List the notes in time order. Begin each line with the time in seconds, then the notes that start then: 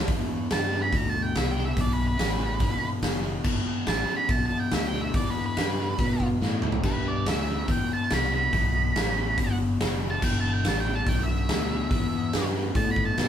0.08 E2 B2, kick, open hi-hat
0.50 E2 G2 C#3 A5, snare, open hi-hat
0.71 E2 C#3
0.82 B5
0.92 D2 E2 B2, kick, open hi-hat
0.96 A#5
1.09 A5
1.22 G5
1.35 C2 E2 B2 E5, snare, open hi-hat
1.51 G5
1.56 E2 B2
1.65 E5
1.77 B1 E2 B2 D5, kick, open hi-hat
1.93 B4
2.08 B4
2.18 A1 E2 C#3, snare, open hi-hat
2.38 E2 C#3
2.59 G1 E2 B2, kick, open hi-hat
3.02 F#1 E2 B2, snare, open hi-hat
3.23 E2 B2
3.44 G1 E2 B2, kick, crash
3.66 muted fingered electric bass stroke
3.86 A1 E2 C#3 A5, snare, open hi-hat
4.08 E2 C#3, muted fingered electric bass stroke
4.17 B5
4.28 B1 E2 B2 A5, kick, open hi-hat
4.46 A5
4.52 muted fingered electric bass stroke
4.60 G5
4.71 D2 E2 B2 E5, snare, open hi-hat
4.87 G5
4.94 E2 B2
5.02 E5
5.14 E2 B2 D5, kick, open hi-hat
5.30 B4
5.46 B4
5.57 E2 G2 C#3, snare, open hi-hat
5.79 E2 C#3
5.98 E2 B2, kick, open hi-hat
6.20 kick
6.41 E2 A2 B2, snare
6.62 E2 B2, mid tom
6.72 floor tom
6.83 E2 G2 B2 B4, kick, crash
7.08 D5
7.26 D2 E2 C#3 E5, snare, open hi-hat
7.49 E2 C#3
7.68 E2 B2 G5, kick, open hi-hat
7.90 A5, muted fingered electric bass stroke
8.10 C2 E2 B2 B5, snare, open hi-hat
8.32 E2 B2 B5
8.53 B1 E2 B2, kick, open hi-hat
8.96 A1 E2 C#3, snare, open hi-hat
9.17 E2 C#3
9.38 G1 E2 B2, kick, open hi-hat
9.80 F#1 E2 B2, snare, open hi-hat
10.03 E2 B2
10.10 A5
10.22 G1 E2 B2 G5, kick, crash
10.40 A5
10.53 G5
10.64 A1 E2 C#3 A5, snare, open hi-hat
10.80 G5
10.86 E2 C#3
10.95 A5
11.07 B1 E2 B2 G5, kick, open hi-hat
11.23 E5
11.49 D2 E2 B2, snare, open hi-hat
11.71 E2 B2
11.91 E2 B2, kick, open hi-hat
12.33 E2 G2 C#3, snare, open hi-hat
12.56 E2 C#3
12.75 E2 A2 B2 A5, kick, open hi-hat
12.91 B5
12.96 kick
13.05 A5
13.17 E2 B2 A5, snare, open hi-hat